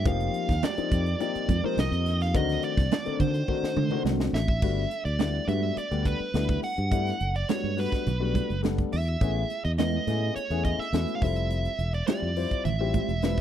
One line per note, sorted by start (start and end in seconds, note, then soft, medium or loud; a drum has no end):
0.00 2.32 F3 medium
0.00 2.31 G4 medium
0.05 0.28 F1 loud
0.05 0.53 F3 medium
0.05 2.32 A#3 medium
0.05 0.53 A#3 medium
0.05 0.53 C4 medium
0.05 2.32 D#4 medium
0.05 0.53 D#4 medium
0.05 0.53 G4 loud
0.05 0.66 F5 loud
0.05 kick loud
0.05 closed hi-hat medium
0.05 muted conga soft
0.20 closed hi-hat soft
0.34 closed hi-hat medium
0.49 0.60 D#2 medium
0.49 kick medium
0.49 snare soft
0.49 closed hi-hat soft
0.63 1.20 D5 medium
0.63 snare loud
0.63 closed hi-hat medium
0.63 high conga medium
0.78 1.06 F3 medium
0.78 1.06 A#3 medium
0.78 1.06 C4 medium
0.78 1.06 D#4 medium
0.78 1.06 G4 medium
0.78 muted fingered electric bass stroke soft
0.78 closed hi-hat soft
0.91 1.14 F2 medium
0.91 kick medium
0.91 closed hi-hat medium
0.91 muted conga soft
1.06 closed hi-hat soft
1.20 1.49 F3 medium
1.20 1.48 A#3 medium
1.20 1.48 C4 medium
1.20 1.49 D#4 medium
1.20 1.49 G4 medium
1.20 1.65 D5 medium
1.20 closed hi-hat medium
1.20 muted conga soft
1.35 muted fingered electric bass stroke soft
1.35 closed hi-hat soft
1.48 1.60 F2 loud
1.48 kick medium
1.48 closed hi-hat medium
1.48 muted conga soft
1.48 high conga medium
1.64 2.11 F3 medium
1.64 2.10 A#3 medium
1.64 2.10 C4 medium
1.64 2.10 D#4 medium
1.64 2.10 A#4 medium
1.64 1.79 C5 medium
1.64 muted fingered electric bass stroke soft
1.77 1.89 C2 medium
1.77 2.23 D#5 medium
1.77 snare medium
1.77 closed hi-hat medium
1.77 high conga medium
1.91 2.34 F2 medium
1.91 closed hi-hat soft
2.06 snare soft
2.06 closed hi-hat medium
2.21 2.36 F5 medium
2.21 snare soft
2.21 closed hi-hat soft
2.34 2.57 D2 loud
2.34 4.60 D#3 medium
2.34 2.82 D#3 medium
2.34 2.82 A3 medium
2.34 2.82 C4 medium
2.34 4.61 C4 medium
2.34 4.61 D4 medium
2.34 2.82 D4 medium
2.34 4.60 F#4 medium
2.34 2.82 F#4 loud
2.34 2.64 D#5 loud
2.34 kick loud
2.34 closed hi-hat medium
2.34 muted conga soft
2.49 snare soft
2.49 closed hi-hat soft
2.63 3.20 D5 medium
2.63 closed hi-hat medium
2.77 2.88 C2 medium
2.77 kick medium
2.77 snare soft
2.77 closed hi-hat soft
2.91 snare loud
2.91 closed hi-hat medium
2.91 high conga medium
3.05 3.34 D#3 medium
3.05 3.34 A3 medium
3.05 3.34 C4 medium
3.05 3.34 D4 medium
3.05 3.34 A4 medium
3.05 muted fingered electric bass stroke soft
3.05 closed hi-hat soft
3.20 3.42 D3 medium
3.20 4.02 C5 medium
3.20 kick medium
3.20 closed hi-hat medium
3.20 muted conga soft
3.20 low conga medium
3.34 closed hi-hat soft
3.48 3.76 D#3 medium
3.48 3.77 A3 medium
3.48 3.77 C4 medium
3.48 3.77 D4 medium
3.48 3.77 F#4 medium
3.48 kick medium
3.48 muted conga soft
3.63 muted fingered electric bass stroke soft
3.63 snare medium
3.76 3.88 D3 medium
3.76 mid tom medium
3.76 muted conga soft
3.76 high conga medium
3.91 4.38 D#3 medium
3.91 4.38 A3 medium
3.91 4.38 C4 medium
3.91 4.38 D4 medium
3.91 4.38 F#4 medium
3.91 muted fingered electric bass stroke soft
3.91 mid tom medium
4.05 4.31 C2 medium
4.05 snare medium
4.05 high conga medium
4.20 snare medium
4.33 4.59 A1 medium
4.33 5.05 E5 medium
4.33 snare medium
4.48 kick medium
4.62 4.85 G1 medium
4.62 4.82 G3 medium
4.62 4.82 A3 medium
4.62 4.82 B3 medium
4.62 4.82 D4 medium
4.62 4.82 F#4 medium
4.62 kick medium
4.62 crash medium
4.62 muted conga soft
4.91 4.98 D4 soft
4.91 4.98 A4 soft
4.91 closed hi-hat soft
4.91 muted conga soft
5.05 5.38 D2 medium
5.05 5.19 D5 medium
5.05 closed hi-hat soft
5.19 5.39 G3 medium
5.19 5.39 A3 medium
5.19 5.39 B3 medium
5.19 5.39 D4 medium
5.19 5.39 E4 medium
5.19 5.48 D5 medium
5.19 snare loud
5.19 closed hi-hat medium
5.19 high conga medium
5.48 5.70 G2 medium
5.48 5.77 G3 medium
5.48 5.77 A3 medium
5.48 5.77 B3 medium
5.48 5.77 D4 medium
5.48 5.77 F#4 medium
5.48 5.78 E5 medium
5.48 closed hi-hat medium
5.48 high conga medium
5.77 6.07 D5 medium
5.77 muted fingered electric bass stroke soft
5.77 closed hi-hat medium
5.77 muted conga soft
5.91 6.14 D2 medium
5.91 6.20 G3 medium
5.91 6.20 A3 medium
5.91 6.20 B3 medium
5.91 6.20 D4 medium
5.91 6.20 G4 medium
5.91 closed hi-hat soft
6.05 6.59 B4 medium
6.05 kick medium
6.05 closed hi-hat medium
6.20 muted fingered electric bass stroke soft
6.34 6.56 D2 medium
6.34 6.63 G3 medium
6.34 6.63 A3 medium
6.34 6.62 B3 medium
6.34 6.63 D4 medium
6.34 6.63 E4 medium
6.34 snare medium
6.34 closed hi-hat medium
6.34 high conga medium
6.49 kick medium
6.49 closed hi-hat soft
6.63 7.38 F#5 medium
6.63 open hi-hat medium
6.63 muted conga soft
6.78 7.11 G2 medium
6.78 6.84 D4 soft
6.78 6.85 F#4 soft
6.78 closed hi-hat soft
6.91 7.10 G3 medium
6.91 7.10 A3 medium
6.91 7.10 B3 medium
6.91 7.11 D4 medium
6.91 7.10 E4 medium
6.91 kick medium
6.91 closed hi-hat medium
6.91 muted conga soft
7.07 snare soft
7.07 closed hi-hat soft
7.20 7.43 F#1 medium
7.20 7.27 D4 soft
7.20 7.27 A4 soft
7.20 closed hi-hat medium
7.20 muted conga soft
7.35 7.49 D5 medium
7.35 closed hi-hat soft
7.49 7.68 G3 medium
7.49 7.68 A3 medium
7.49 7.68 B3 medium
7.49 7.68 D4 medium
7.49 7.68 F#4 medium
7.49 7.79 C#5 medium
7.49 snare loud
7.49 closed hi-hat medium
7.49 high conga medium
7.64 7.86 G2 medium
7.77 8.05 G3 medium
7.77 8.05 A3 medium
7.77 8.05 B3 medium
7.77 8.05 D4 medium
7.77 8.06 F#4 medium
7.77 8.60 B4 medium
7.77 snare soft
7.77 open hi-hat medium
7.92 kick medium
7.92 snare soft
7.92 closed hi-hat soft
8.07 8.40 B1 medium
8.07 closed hi-hat medium
8.07 muted conga soft
8.07 low conga medium
8.20 8.49 G3 medium
8.20 8.49 A3 medium
8.20 8.49 B3 medium
8.20 8.49 D4 medium
8.20 8.49 F#4 medium
8.35 kick medium
8.35 closed hi-hat medium
8.35 high conga medium
8.50 8.83 F#1 medium
8.50 closed hi-hat soft
8.62 8.91 G3 medium
8.62 8.91 A3 medium
8.62 8.91 B3 medium
8.62 8.91 D4 medium
8.62 8.91 A4 medium
8.62 snare medium
8.62 closed hi-hat medium
8.62 high conga medium
8.78 kick medium
8.78 closed hi-hat soft
8.92 9.15 E2 medium
8.92 9.64 E5 medium
8.92 open hi-hat medium
8.92 muted conga soft
9.07 9.14 D4 soft
9.07 9.14 F#4 soft
9.07 closed hi-hat soft
9.21 9.43 A1 medium
9.21 9.40 A3 medium
9.21 9.40 B3 medium
9.21 9.40 C#4 medium
9.21 9.40 E4 medium
9.21 9.40 G#4 medium
9.21 kick loud
9.21 closed hi-hat medium
9.21 muted conga soft
9.50 closed hi-hat soft
9.50 muted conga soft
9.64 9.98 E2 medium
9.64 9.70 D#5 medium
9.64 closed hi-hat soft
9.78 9.97 A3 medium
9.78 9.97 B3 medium
9.78 9.97 C#4 medium
9.78 9.98 E4 medium
9.78 9.98 B4 medium
9.78 10.35 D#5 medium
9.78 snare medium
9.78 closed hi-hat medium
9.78 high conga medium
10.07 10.29 A2 medium
10.07 10.35 A3 medium
10.07 10.36 B3 medium
10.07 10.36 C#4 medium
10.07 10.35 E4 medium
10.07 10.36 G#4 medium
10.07 snare soft
10.07 closed hi-hat medium
10.07 high conga medium
10.36 10.62 C#5 medium
10.36 muted fingered electric bass stroke soft
10.36 closed hi-hat medium
10.36 muted conga soft
10.50 10.72 E2 medium
10.50 10.79 A3 medium
10.50 10.79 B3 medium
10.50 10.79 C#4 medium
10.50 10.79 E4 medium
10.50 10.79 G#4 medium
10.50 closed hi-hat soft
10.65 10.79 D#5 medium
10.65 kick medium
10.65 closed hi-hat soft
10.78 11.16 E5 medium
10.78 muted fingered electric bass stroke soft
10.78 snare soft
10.93 11.04 E2 medium
10.93 11.21 A3 medium
10.93 11.21 B3 medium
10.93 11.21 C#4 medium
10.93 11.21 E4 medium
10.93 11.21 F#4 medium
10.93 snare medium
10.93 closed hi-hat medium
10.93 high conga medium
11.08 closed hi-hat soft
11.15 11.22 F5 medium
11.22 11.66 F1 medium
11.22 11.68 G3 medium
11.22 11.68 C4 medium
11.22 11.68 E4 medium
11.22 11.68 F4 medium
11.22 11.68 A4 medium
11.22 11.94 E5 medium
11.22 kick medium
11.22 open hi-hat medium
11.37 closed hi-hat soft
11.51 closed hi-hat medium
11.51 muted conga soft
11.65 closed hi-hat soft
11.79 12.01 E1 medium
11.79 11.87 F4 soft
11.79 11.87 A4 soft
11.79 closed hi-hat medium
11.79 muted conga soft
11.94 12.06 D5 medium
11.94 closed hi-hat soft
12.07 12.27 G3 medium
12.07 12.27 C4 medium
12.07 12.27 E4 medium
12.07 12.27 F4 medium
12.07 12.27 G4 medium
12.07 12.65 D5 medium
12.07 snare medium
12.07 closed hi-hat medium
12.07 high conga medium
12.22 12.45 F2 medium
12.36 12.65 G3 medium
12.36 12.65 C4 medium
12.36 12.65 E4 medium
12.36 12.65 F4 medium
12.36 12.65 C5 medium
12.36 open hi-hat medium
12.51 kick medium
12.51 closed hi-hat soft
12.65 12.99 A1 medium
12.65 13.41 E5 medium
12.65 closed hi-hat medium
12.65 muted conga soft
12.65 low conga medium
12.80 13.09 G3 medium
12.80 13.09 C4 medium
12.80 13.09 E4 medium
12.80 13.09 F4 medium
12.80 13.09 G4 medium
12.94 kick medium
12.94 closed hi-hat soft
12.94 high conga medium
13.09 13.41 E1 medium
13.09 closed hi-hat soft
13.22 13.41 G3 medium
13.22 13.41 C4 medium
13.22 13.41 E4 medium
13.22 13.41 F4 medium
13.22 13.41 B4 medium
13.22 snare medium
13.22 closed hi-hat medium
13.22 high conga medium
13.37 kick medium
13.37 closed hi-hat soft